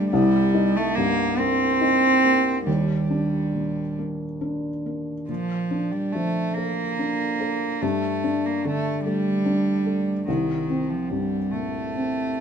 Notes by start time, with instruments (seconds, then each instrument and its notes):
Already playing: felt piano D3 A3 D4, cello G3
0.11 felt piano C2, cello G3
0.54 felt piano D#4
0.76 cello A3
0.95 felt piano G2, cello A#3
1.38 felt piano A#3, cello C4
1.81 felt piano D#4
2.24 felt piano A#3
2.65 felt piano D#2, cello G3
3.10 felt piano D4
3.54 felt piano A#2
3.98 felt piano A#3
4.41 felt piano D4
4.86 felt piano A#3
5.29 felt piano A#2, cello F3
5.71 felt piano D4
5.91 cello G3
6.12 felt piano F3, cello A3
6.55 cello A#3, felt piano A4
6.99 felt piano D4
7.40 felt piano A4
7.81 felt piano G2, cello A3
8.24 felt piano D4
8.45 cello A#3
8.65 felt piano D3, cello A3
9.05 cello G3, felt piano A3
9.46 felt piano D4
9.86 felt piano A3
10.28 felt piano C2, cello D#3
10.69 felt piano C4
10.90 cello F3
11.09 felt piano G2, cello G3
11.51 felt piano A#2, cello A3
11.95 felt piano C4